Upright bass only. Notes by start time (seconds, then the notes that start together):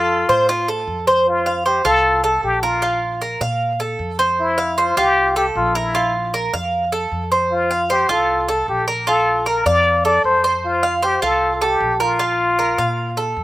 Already playing: F2
0.29 A2
0.87 F2
1.85 C2
2.43 A#1
3.41 A#2
3.99 F2
4.97 C2
5.55 A#1
6.53 F2
7.12 F2
8.09 C2
8.68 A#1
9.65 F2
10.24 F2
11.22 C2
11.80 A#1
12.78 A#2
13.37 F2